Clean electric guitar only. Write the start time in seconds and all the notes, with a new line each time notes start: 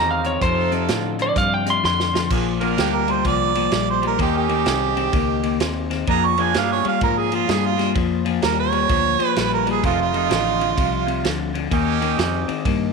Already playing: D#3 C4
0.24 D#3 C4
0.41 F2 C3
0.72 F2 C3
0.89 F2 D3
1.19 F2 D3
1.36 F2 C3
1.66 F2 C3
1.83 F2 D3
2.14 F2 D3
2.31 A#2 F3
2.61 A#2 F3
2.77 A#2 G3
3.08 A#2 G3
3.24 A#2 F3
3.56 A#2 F3
3.72 A#2 G3
4.02 A#2 G3
4.18 D#3 A#3
4.49 D#3 A#3
4.65 D#3 C4
4.96 D#3 C4
5.14 D#3 A#3
5.43 D#3 A#3
5.60 D#3 C4
5.90 D#3 C4
6.07 A#2 F3
6.38 A#2 F3
6.54 A#2 G3
6.85 A#2 G3
7.02 A#2 F3
7.32 A#2 F3
7.48 A#2 G3
7.78 A#2 G3
7.95 A#2 F3
8.25 A#2 F3
8.42 A#2 G3
8.72 A#2 G3
8.89 A#2 F3
9.19 A#2 F3
9.37 A#2 G3
9.66 A#2 G3
9.83 F2 C3
10.13 F2 C3
10.30 F2 D3
10.60 F2 D3
10.77 F2 C3
11.07 F2 C3
11.24 F2 D3
11.54 F2 D3
11.71 D#3 A#3
12.01 D#3 A#3
12.18 D#3 C4
12.48 D#3 C4
12.66 D#3 A#3